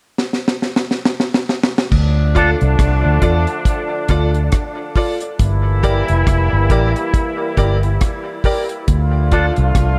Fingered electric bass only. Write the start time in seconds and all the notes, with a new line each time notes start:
1.93 D2
2.62 C2
2.80 C2
3.05 D2
3.23 E2
4.10 D2
5.40 G1
6.10 F1
6.28 F1
6.53 G1
6.71 A1
7.58 G1
8.89 D2
9.58 C2
9.76 C2